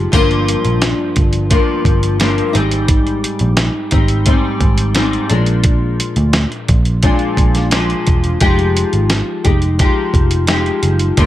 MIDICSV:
0, 0, Header, 1, 4, 480
1, 0, Start_track
1, 0, Tempo, 690449
1, 88, Time_signature, 4, 2, 24, 8
1, 7829, End_track
2, 0, Start_track
2, 0, Title_t, "Nylon-string guitar"
2, 0, Program_c, 0, 24
2, 0, Note_on_c, 0, 53, 67
2, 0, Note_on_c, 0, 56, 65
2, 0, Note_on_c, 0, 63, 69
2, 0, Note_on_c, 0, 67, 69
2, 81, Note_on_c, 0, 43, 82
2, 86, Note_off_c, 0, 56, 0
2, 88, Note_off_c, 0, 53, 0
2, 88, Note_off_c, 0, 63, 0
2, 91, Note_on_c, 0, 53, 91
2, 100, Note_on_c, 0, 58, 96
2, 105, Note_on_c, 0, 62, 85
2, 111, Note_off_c, 0, 67, 0
2, 1034, Note_off_c, 0, 43, 0
2, 1041, Note_off_c, 0, 53, 0
2, 1042, Note_on_c, 0, 43, 68
2, 1044, Note_off_c, 0, 58, 0
2, 1047, Note_off_c, 0, 62, 0
2, 1049, Note_on_c, 0, 53, 75
2, 1053, Note_on_c, 0, 58, 77
2, 1055, Note_on_c, 0, 62, 73
2, 1516, Note_off_c, 0, 43, 0
2, 1523, Note_off_c, 0, 53, 0
2, 1525, Note_on_c, 0, 43, 70
2, 1528, Note_off_c, 0, 58, 0
2, 1531, Note_off_c, 0, 62, 0
2, 1531, Note_on_c, 0, 53, 69
2, 1536, Note_on_c, 0, 58, 75
2, 1540, Note_on_c, 0, 62, 80
2, 1757, Note_off_c, 0, 62, 0
2, 1759, Note_on_c, 0, 63, 81
2, 1764, Note_off_c, 0, 58, 0
2, 1766, Note_off_c, 0, 43, 0
2, 1767, Note_on_c, 0, 60, 62
2, 1769, Note_off_c, 0, 53, 0
2, 1773, Note_on_c, 0, 55, 62
2, 1781, Note_on_c, 0, 44, 60
2, 2714, Note_off_c, 0, 63, 0
2, 2721, Note_off_c, 0, 60, 0
2, 2722, Note_on_c, 0, 63, 61
2, 2726, Note_off_c, 0, 55, 0
2, 2729, Note_on_c, 0, 60, 54
2, 2734, Note_off_c, 0, 44, 0
2, 2734, Note_on_c, 0, 55, 50
2, 2962, Note_off_c, 0, 55, 0
2, 2963, Note_on_c, 0, 44, 70
2, 2965, Note_off_c, 0, 63, 0
2, 2966, Note_off_c, 0, 60, 0
2, 2971, Note_on_c, 0, 55, 69
2, 2974, Note_on_c, 0, 60, 72
2, 2977, Note_on_c, 0, 63, 80
2, 3433, Note_off_c, 0, 44, 0
2, 3438, Note_off_c, 0, 55, 0
2, 3441, Note_on_c, 0, 44, 77
2, 3443, Note_off_c, 0, 60, 0
2, 3445, Note_off_c, 0, 63, 0
2, 3446, Note_on_c, 0, 55, 74
2, 3451, Note_on_c, 0, 60, 67
2, 3453, Note_on_c, 0, 63, 81
2, 3678, Note_off_c, 0, 63, 0
2, 3681, Note_on_c, 0, 62, 66
2, 3684, Note_off_c, 0, 44, 0
2, 3687, Note_off_c, 0, 55, 0
2, 3688, Note_off_c, 0, 60, 0
2, 3690, Note_on_c, 0, 56, 70
2, 3697, Note_on_c, 0, 53, 62
2, 3705, Note_on_c, 0, 46, 57
2, 4876, Note_off_c, 0, 46, 0
2, 4884, Note_on_c, 0, 46, 67
2, 4885, Note_off_c, 0, 53, 0
2, 4885, Note_off_c, 0, 62, 0
2, 4888, Note_on_c, 0, 53, 66
2, 4890, Note_off_c, 0, 56, 0
2, 4893, Note_on_c, 0, 56, 74
2, 4898, Note_on_c, 0, 62, 79
2, 5352, Note_off_c, 0, 46, 0
2, 5360, Note_on_c, 0, 46, 74
2, 5365, Note_off_c, 0, 53, 0
2, 5367, Note_off_c, 0, 56, 0
2, 5367, Note_on_c, 0, 53, 72
2, 5368, Note_off_c, 0, 62, 0
2, 5369, Note_on_c, 0, 56, 70
2, 5376, Note_on_c, 0, 62, 78
2, 5840, Note_off_c, 0, 53, 0
2, 5843, Note_on_c, 0, 53, 70
2, 5844, Note_off_c, 0, 56, 0
2, 5845, Note_off_c, 0, 46, 0
2, 5846, Note_off_c, 0, 62, 0
2, 5847, Note_on_c, 0, 56, 92
2, 5849, Note_on_c, 0, 63, 94
2, 5853, Note_on_c, 0, 67, 93
2, 6562, Note_off_c, 0, 67, 0
2, 6565, Note_on_c, 0, 67, 58
2, 6566, Note_off_c, 0, 63, 0
2, 6568, Note_off_c, 0, 56, 0
2, 6574, Note_on_c, 0, 63, 55
2, 6581, Note_on_c, 0, 56, 55
2, 6586, Note_off_c, 0, 53, 0
2, 6802, Note_off_c, 0, 56, 0
2, 6805, Note_off_c, 0, 63, 0
2, 6805, Note_on_c, 0, 53, 69
2, 6807, Note_off_c, 0, 67, 0
2, 6810, Note_on_c, 0, 56, 66
2, 6814, Note_on_c, 0, 63, 70
2, 6820, Note_on_c, 0, 67, 69
2, 7278, Note_off_c, 0, 53, 0
2, 7278, Note_off_c, 0, 56, 0
2, 7281, Note_on_c, 0, 53, 74
2, 7283, Note_off_c, 0, 63, 0
2, 7287, Note_on_c, 0, 56, 77
2, 7291, Note_on_c, 0, 63, 74
2, 7294, Note_off_c, 0, 67, 0
2, 7297, Note_on_c, 0, 67, 75
2, 7766, Note_on_c, 0, 43, 95
2, 7769, Note_off_c, 0, 56, 0
2, 7770, Note_off_c, 0, 53, 0
2, 7771, Note_off_c, 0, 63, 0
2, 7773, Note_on_c, 0, 53, 80
2, 7773, Note_on_c, 0, 58, 92
2, 7778, Note_on_c, 0, 62, 90
2, 7794, Note_off_c, 0, 67, 0
2, 7829, Note_off_c, 0, 43, 0
2, 7829, Note_off_c, 0, 53, 0
2, 7829, Note_off_c, 0, 58, 0
2, 7829, Note_off_c, 0, 62, 0
2, 7829, End_track
3, 0, Start_track
3, 0, Title_t, "Picked electric bass"
3, 0, Program_c, 1, 34
3, 94, Note_on_c, 1, 31, 107
3, 379, Note_off_c, 1, 31, 0
3, 455, Note_on_c, 1, 34, 80
3, 644, Note_off_c, 1, 34, 0
3, 813, Note_on_c, 1, 31, 93
3, 1099, Note_off_c, 1, 31, 0
3, 1286, Note_on_c, 1, 31, 100
3, 1670, Note_off_c, 1, 31, 0
3, 1774, Note_on_c, 1, 32, 82
3, 2251, Note_off_c, 1, 32, 0
3, 2371, Note_on_c, 1, 34, 94
3, 2561, Note_off_c, 1, 34, 0
3, 2729, Note_on_c, 1, 32, 104
3, 3016, Note_off_c, 1, 32, 0
3, 3204, Note_on_c, 1, 32, 101
3, 3589, Note_off_c, 1, 32, 0
3, 3691, Note_on_c, 1, 34, 95
3, 4170, Note_off_c, 1, 34, 0
3, 4287, Note_on_c, 1, 38, 95
3, 4480, Note_off_c, 1, 38, 0
3, 4652, Note_on_c, 1, 34, 93
3, 4939, Note_off_c, 1, 34, 0
3, 5128, Note_on_c, 1, 34, 95
3, 5513, Note_off_c, 1, 34, 0
3, 5617, Note_on_c, 1, 28, 80
3, 5806, Note_off_c, 1, 28, 0
3, 5850, Note_on_c, 1, 29, 112
3, 6138, Note_off_c, 1, 29, 0
3, 6212, Note_on_c, 1, 32, 85
3, 6403, Note_off_c, 1, 32, 0
3, 6575, Note_on_c, 1, 29, 100
3, 6861, Note_off_c, 1, 29, 0
3, 7050, Note_on_c, 1, 29, 96
3, 7434, Note_off_c, 1, 29, 0
3, 7530, Note_on_c, 1, 30, 81
3, 7722, Note_off_c, 1, 30, 0
3, 7771, Note_on_c, 1, 31, 110
3, 7829, Note_off_c, 1, 31, 0
3, 7829, End_track
4, 0, Start_track
4, 0, Title_t, "Drums"
4, 90, Note_on_c, 9, 42, 86
4, 91, Note_on_c, 9, 36, 120
4, 160, Note_off_c, 9, 36, 0
4, 160, Note_off_c, 9, 42, 0
4, 215, Note_on_c, 9, 42, 34
4, 284, Note_off_c, 9, 42, 0
4, 337, Note_on_c, 9, 42, 78
4, 407, Note_off_c, 9, 42, 0
4, 449, Note_on_c, 9, 42, 43
4, 518, Note_off_c, 9, 42, 0
4, 567, Note_on_c, 9, 42, 75
4, 570, Note_on_c, 9, 38, 106
4, 637, Note_off_c, 9, 42, 0
4, 639, Note_off_c, 9, 38, 0
4, 805, Note_on_c, 9, 42, 71
4, 811, Note_on_c, 9, 36, 92
4, 875, Note_off_c, 9, 42, 0
4, 880, Note_off_c, 9, 36, 0
4, 922, Note_on_c, 9, 42, 49
4, 991, Note_off_c, 9, 42, 0
4, 1047, Note_on_c, 9, 42, 91
4, 1050, Note_on_c, 9, 36, 109
4, 1116, Note_off_c, 9, 42, 0
4, 1119, Note_off_c, 9, 36, 0
4, 1287, Note_on_c, 9, 36, 85
4, 1292, Note_on_c, 9, 42, 52
4, 1356, Note_off_c, 9, 36, 0
4, 1362, Note_off_c, 9, 42, 0
4, 1411, Note_on_c, 9, 42, 64
4, 1480, Note_off_c, 9, 42, 0
4, 1527, Note_on_c, 9, 42, 79
4, 1535, Note_on_c, 9, 38, 120
4, 1597, Note_off_c, 9, 42, 0
4, 1605, Note_off_c, 9, 38, 0
4, 1655, Note_on_c, 9, 42, 32
4, 1724, Note_off_c, 9, 42, 0
4, 1772, Note_on_c, 9, 42, 73
4, 1842, Note_off_c, 9, 42, 0
4, 1887, Note_on_c, 9, 42, 51
4, 1957, Note_off_c, 9, 42, 0
4, 2005, Note_on_c, 9, 42, 88
4, 2007, Note_on_c, 9, 36, 122
4, 2074, Note_off_c, 9, 42, 0
4, 2076, Note_off_c, 9, 36, 0
4, 2131, Note_on_c, 9, 42, 37
4, 2201, Note_off_c, 9, 42, 0
4, 2253, Note_on_c, 9, 42, 80
4, 2322, Note_off_c, 9, 42, 0
4, 2358, Note_on_c, 9, 42, 44
4, 2428, Note_off_c, 9, 42, 0
4, 2480, Note_on_c, 9, 42, 81
4, 2482, Note_on_c, 9, 38, 108
4, 2550, Note_off_c, 9, 42, 0
4, 2552, Note_off_c, 9, 38, 0
4, 2718, Note_on_c, 9, 42, 74
4, 2727, Note_on_c, 9, 36, 86
4, 2788, Note_off_c, 9, 42, 0
4, 2797, Note_off_c, 9, 36, 0
4, 2839, Note_on_c, 9, 42, 47
4, 2909, Note_off_c, 9, 42, 0
4, 2960, Note_on_c, 9, 42, 90
4, 2966, Note_on_c, 9, 36, 95
4, 3029, Note_off_c, 9, 42, 0
4, 3036, Note_off_c, 9, 36, 0
4, 3202, Note_on_c, 9, 36, 89
4, 3202, Note_on_c, 9, 42, 54
4, 3271, Note_off_c, 9, 36, 0
4, 3272, Note_off_c, 9, 42, 0
4, 3320, Note_on_c, 9, 42, 63
4, 3390, Note_off_c, 9, 42, 0
4, 3438, Note_on_c, 9, 42, 82
4, 3446, Note_on_c, 9, 38, 115
4, 3508, Note_off_c, 9, 42, 0
4, 3515, Note_off_c, 9, 38, 0
4, 3569, Note_on_c, 9, 42, 36
4, 3638, Note_off_c, 9, 42, 0
4, 3681, Note_on_c, 9, 42, 71
4, 3751, Note_off_c, 9, 42, 0
4, 3799, Note_on_c, 9, 42, 47
4, 3868, Note_off_c, 9, 42, 0
4, 3918, Note_on_c, 9, 42, 88
4, 3924, Note_on_c, 9, 36, 118
4, 3987, Note_off_c, 9, 42, 0
4, 3994, Note_off_c, 9, 36, 0
4, 4170, Note_on_c, 9, 42, 82
4, 4240, Note_off_c, 9, 42, 0
4, 4283, Note_on_c, 9, 42, 52
4, 4353, Note_off_c, 9, 42, 0
4, 4402, Note_on_c, 9, 42, 81
4, 4404, Note_on_c, 9, 38, 104
4, 4471, Note_off_c, 9, 42, 0
4, 4474, Note_off_c, 9, 38, 0
4, 4531, Note_on_c, 9, 42, 33
4, 4600, Note_off_c, 9, 42, 0
4, 4647, Note_on_c, 9, 42, 67
4, 4651, Note_on_c, 9, 36, 89
4, 4717, Note_off_c, 9, 42, 0
4, 4720, Note_off_c, 9, 36, 0
4, 4765, Note_on_c, 9, 42, 51
4, 4834, Note_off_c, 9, 42, 0
4, 4884, Note_on_c, 9, 42, 91
4, 4891, Note_on_c, 9, 36, 105
4, 4954, Note_off_c, 9, 42, 0
4, 4960, Note_off_c, 9, 36, 0
4, 4998, Note_on_c, 9, 42, 34
4, 5068, Note_off_c, 9, 42, 0
4, 5126, Note_on_c, 9, 36, 93
4, 5132, Note_on_c, 9, 42, 59
4, 5195, Note_off_c, 9, 36, 0
4, 5201, Note_off_c, 9, 42, 0
4, 5247, Note_on_c, 9, 42, 62
4, 5253, Note_on_c, 9, 38, 37
4, 5316, Note_off_c, 9, 42, 0
4, 5322, Note_off_c, 9, 38, 0
4, 5362, Note_on_c, 9, 42, 81
4, 5370, Note_on_c, 9, 38, 126
4, 5432, Note_off_c, 9, 42, 0
4, 5440, Note_off_c, 9, 38, 0
4, 5491, Note_on_c, 9, 42, 36
4, 5561, Note_off_c, 9, 42, 0
4, 5608, Note_on_c, 9, 42, 66
4, 5614, Note_on_c, 9, 36, 94
4, 5677, Note_off_c, 9, 42, 0
4, 5683, Note_off_c, 9, 36, 0
4, 5727, Note_on_c, 9, 42, 49
4, 5796, Note_off_c, 9, 42, 0
4, 5843, Note_on_c, 9, 42, 87
4, 5849, Note_on_c, 9, 36, 118
4, 5913, Note_off_c, 9, 42, 0
4, 5918, Note_off_c, 9, 36, 0
4, 5970, Note_on_c, 9, 42, 33
4, 6040, Note_off_c, 9, 42, 0
4, 6094, Note_on_c, 9, 42, 77
4, 6164, Note_off_c, 9, 42, 0
4, 6207, Note_on_c, 9, 42, 47
4, 6277, Note_off_c, 9, 42, 0
4, 6324, Note_on_c, 9, 42, 80
4, 6326, Note_on_c, 9, 38, 110
4, 6393, Note_off_c, 9, 42, 0
4, 6396, Note_off_c, 9, 38, 0
4, 6567, Note_on_c, 9, 42, 68
4, 6572, Note_on_c, 9, 36, 87
4, 6637, Note_off_c, 9, 42, 0
4, 6641, Note_off_c, 9, 36, 0
4, 6686, Note_on_c, 9, 42, 47
4, 6756, Note_off_c, 9, 42, 0
4, 6808, Note_on_c, 9, 42, 90
4, 6812, Note_on_c, 9, 36, 95
4, 6877, Note_off_c, 9, 42, 0
4, 6882, Note_off_c, 9, 36, 0
4, 7048, Note_on_c, 9, 36, 92
4, 7054, Note_on_c, 9, 42, 55
4, 7117, Note_off_c, 9, 36, 0
4, 7123, Note_off_c, 9, 42, 0
4, 7166, Note_on_c, 9, 42, 66
4, 7235, Note_off_c, 9, 42, 0
4, 7281, Note_on_c, 9, 42, 81
4, 7289, Note_on_c, 9, 38, 122
4, 7351, Note_off_c, 9, 42, 0
4, 7359, Note_off_c, 9, 38, 0
4, 7411, Note_on_c, 9, 42, 33
4, 7481, Note_off_c, 9, 42, 0
4, 7527, Note_on_c, 9, 42, 74
4, 7596, Note_off_c, 9, 42, 0
4, 7643, Note_on_c, 9, 42, 51
4, 7713, Note_off_c, 9, 42, 0
4, 7767, Note_on_c, 9, 42, 81
4, 7770, Note_on_c, 9, 36, 121
4, 7829, Note_off_c, 9, 36, 0
4, 7829, Note_off_c, 9, 42, 0
4, 7829, End_track
0, 0, End_of_file